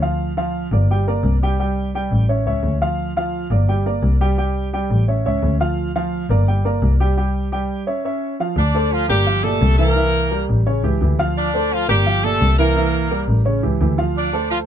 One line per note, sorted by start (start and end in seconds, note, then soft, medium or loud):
0.00 0.66 D2 loud
0.00 0.31 F3 medium
0.00 0.31 F4 medium
0.00 0.31 F5 medium
0.37 0.66 F3 loud
0.37 0.66 F4 medium
0.37 0.66 F5 medium
0.72 1.21 G1 loud
0.72 0.87 A#3 medium
0.72 0.87 A#4 medium
0.72 0.87 D5 medium
0.90 1.04 G3 medium
0.90 1.04 G4 medium
0.90 1.05 G5 medium
1.08 1.36 A#3 medium
1.08 1.36 A#4 medium
1.08 1.36 D5 medium
1.23 2.05 C2 medium
1.43 1.57 G3 medium
1.43 1.57 G4 medium
1.43 1.57 G5 medium
1.59 1.88 G3 medium
1.59 1.88 G4 medium
1.59 1.88 G5 medium
1.95 2.23 G3 medium
1.95 2.23 G4 medium
1.95 2.23 G5 medium
2.12 2.44 A1 medium
2.29 2.43 C#4 medium
2.29 2.44 C#5 medium
2.29 2.44 E5 medium
2.46 2.62 C#2 medium
2.46 2.75 C#4 medium
2.46 2.75 C#5 medium
2.46 2.75 E5 medium
2.63 3.45 D2 medium
2.81 3.10 F3 medium
2.81 3.10 F4 medium
2.81 3.10 F5 loud
3.17 3.45 F3 medium
3.17 3.45 F4 loud
3.17 3.45 F5 medium
3.50 3.99 G1 loud
3.50 3.65 A#3 medium
3.50 3.65 A#4 medium
3.50 3.66 D5 medium
3.68 3.83 G3 medium
3.68 3.83 G4 medium
3.68 3.83 G5 medium
3.86 4.15 A#3 medium
3.86 4.15 A#4 medium
3.86 4.15 D5 medium
4.03 4.85 C2 loud
4.21 4.35 G3 medium
4.21 4.35 G4 loud
4.21 4.35 G5 medium
4.38 4.67 G3 medium
4.38 4.67 G4 medium
4.38 4.67 G5 medium
4.73 5.02 G3 medium
4.73 5.02 G4 medium
4.73 5.02 G5 medium
4.90 5.23 A1 loud
5.08 5.22 C#4 medium
5.08 5.22 C#5 medium
5.08 5.23 E5 medium
5.26 5.42 C#2 medium
5.26 5.54 C#4 medium
5.26 5.54 C#5 medium
5.26 5.55 E5 medium
5.43 6.24 D2 loud
5.60 5.89 F3 medium
5.60 5.89 F4 loud
5.60 5.89 F5 medium
5.95 6.24 F3 loud
5.95 6.24 F4 loud
5.95 6.24 F5 medium
6.30 6.79 G1 loud
6.30 6.44 A#3 medium
6.30 6.45 A#4 medium
6.30 6.45 D5 medium
6.48 6.62 G3 medium
6.48 6.62 G4 medium
6.48 6.62 G5 medium
6.65 6.94 A#3 medium
6.65 6.94 A#4 medium
6.65 6.94 D5 medium
6.82 7.64 C2 loud
7.00 7.14 G3 medium
7.00 7.14 G4 medium
7.00 7.15 G5 medium
7.17 7.46 G3 medium
7.17 7.46 G4 medium
7.17 7.46 G5 medium
7.52 7.81 G3 medium
7.52 7.81 G4 medium
7.52 7.81 G5 medium
7.87 8.01 C#4 medium
7.87 8.01 C#5 medium
7.87 8.02 E5 medium
8.05 8.33 C#4 medium
8.05 8.34 C#5 medium
8.05 8.34 E5 medium
8.40 8.54 F3 medium
8.40 8.54 F4 medium
8.40 8.54 F5 medium
8.57 9.06 D2 loud
8.57 8.90 D4 medium
8.57 8.90 D5 medium
8.74 9.03 A3 medium
8.74 9.03 A4 medium
8.74 9.04 C5 medium
8.92 9.10 F3 medium
8.92 9.09 F4 medium
9.09 9.58 G1 medium
9.09 9.42 G3 medium
9.09 9.23 A#3 medium
9.09 9.42 G4 loud
9.09 9.23 A#4 medium
9.09 9.24 D5 medium
9.26 9.41 F3 medium
9.26 9.41 F4 medium
9.26 9.41 F5 medium
9.43 9.72 A#2 medium
9.43 9.80 A3 medium
9.43 9.73 G4 medium
9.43 9.79 A4 loud
9.43 9.73 D5 medium
9.62 10.43 C2 loud
9.79 9.93 E3 loud
9.79 10.46 A#3 medium
9.79 9.93 E4 loud
9.79 10.45 A#4 loud
9.79 9.94 E5 medium
9.96 10.25 E3 medium
9.96 10.25 E4 medium
9.96 10.25 E5 medium
10.31 10.60 G3 medium
10.31 10.60 G4 medium
10.31 10.60 A#4 medium
10.49 10.82 A1 medium
10.66 10.81 C#3 medium
10.66 10.81 C#4 medium
10.66 10.81 C#5 medium
10.83 11.00 C#2 medium
10.83 10.98 E3 medium
10.83 10.98 E4 medium
10.83 10.98 G4 medium
11.01 11.83 D2 loud
11.01 11.16 E3 medium
11.01 11.16 E4 medium
11.01 11.16 G4 medium
11.19 11.48 F3 loud
11.19 11.48 F4 loud
11.19 11.48 F5 loud
11.38 11.70 D4 medium
11.38 11.70 D5 medium
11.54 11.82 A3 medium
11.54 11.83 A4 medium
11.54 11.83 C5 medium
11.73 11.90 F3 medium
11.73 11.90 F4 loud
11.89 12.38 G1 medium
11.89 12.21 G3 medium
11.89 12.03 A#3 medium
11.89 12.21 G4 loud
11.89 12.03 A#4 medium
11.89 12.03 D5 medium
12.06 12.20 F3 medium
12.06 12.21 F4 medium
12.06 12.21 F5 medium
12.24 12.52 A#2 medium
12.24 12.59 A3 medium
12.24 12.53 G4 medium
12.24 12.59 A4 loud
12.24 12.53 D5 medium
12.41 13.23 C2 loud
12.59 12.73 E3 loud
12.59 13.24 A#3 medium
12.59 12.73 E4 loud
12.59 13.25 A#4 medium
12.59 12.73 E5 medium
12.76 13.05 E3 medium
12.76 13.05 E4 medium
12.76 13.05 E5 medium
13.11 13.39 G3 medium
13.11 13.40 G4 medium
13.11 13.40 A#4 medium
13.28 13.61 A1 loud
13.45 13.60 C#3 medium
13.45 13.60 C#4 medium
13.45 13.60 C#5 medium
13.63 13.80 C#2 medium
13.63 13.77 E3 medium
13.63 13.77 E4 medium
13.63 13.77 G4 medium
13.80 14.62 D2 loud
13.80 13.95 E3 medium
13.80 13.95 E4 medium
13.80 13.95 G4 medium
13.98 14.27 F3 medium
13.98 14.27 F4 loud
13.98 14.27 F5 medium
14.17 14.49 D4 medium
14.17 14.49 D5 medium
14.33 14.62 A3 medium
14.33 14.62 A4 medium
14.33 14.62 C5 medium
14.51 14.58 F3 medium
14.51 14.59 F4 medium